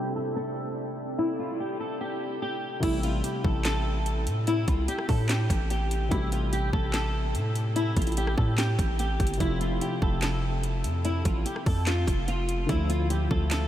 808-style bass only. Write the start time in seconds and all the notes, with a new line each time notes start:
2.83 A1
3.44 A1
4.27 A2
4.68 C2
5.09 A2
5.50 A1
6.12 A1
6.73 A1
7.35 A2
7.97 A1
8.38 A2
8.79 A1
9.20 G1
9.40 F1
10.02 F1
10.84 F2
11.25 A1
11.66 F2
12.07 F1
12.69 D2
13.31 D2